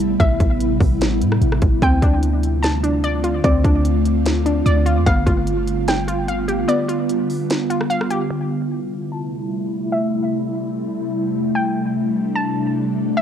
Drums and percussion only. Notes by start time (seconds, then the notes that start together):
0.20 kick, closed hi-hat
0.40 kick, closed hi-hat
0.61 closed hi-hat
0.81 kick, open hi-hat
1.01 snare, closed hi-hat
1.22 closed hi-hat
1.32 cross-stick
1.42 closed hi-hat
1.52 cross-stick
1.62 kick, closed hi-hat
1.82 kick, closed hi-hat
2.02 kick, closed hi-hat
2.23 closed hi-hat
2.43 closed hi-hat
2.63 snare, closed hi-hat
2.84 closed hi-hat
3.04 closed hi-hat
3.24 closed hi-hat
3.44 kick, closed hi-hat
3.64 kick, closed hi-hat
3.85 closed hi-hat
4.05 closed hi-hat
4.26 snare, closed hi-hat
4.46 closed hi-hat
4.66 closed hi-hat
4.86 closed hi-hat
5.06 kick, closed hi-hat
5.27 kick, closed hi-hat
5.47 closed hi-hat
5.68 closed hi-hat
5.88 snare, closed hi-hat
6.08 closed hi-hat
6.28 closed hi-hat
6.48 closed hi-hat
6.69 closed hi-hat
6.89 closed hi-hat
7.09 closed hi-hat
7.30 open hi-hat
7.50 snare, closed hi-hat
7.70 closed hi-hat
7.81 cross-stick
7.90 closed hi-hat
8.01 cross-stick
8.11 closed hi-hat